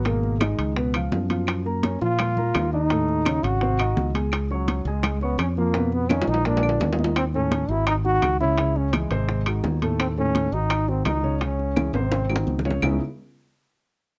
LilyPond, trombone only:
\new Staff \with { instrumentName = "Trombone" } { \time 4/4 \key fis \dorian \tempo 4 = 169 ais4 gis4 r2 | r4 cis'8 eis'2 dis'8~ | dis'4. fis'2 r8 | r8 fis4 gis4 b8 cis'8 ais8~ |
ais8 b8 cis'8 dis'8 d'4. r8 | \key cis \minor bis8 cis'4 e'8 dis'8 fis'4 e'8~ | e'8 cis'8 gis2 r4 | bis8 cis'4 dis'4 bis8 dis'4 |
cis'4. bis2 r8 | cis'8 r2. r8 | }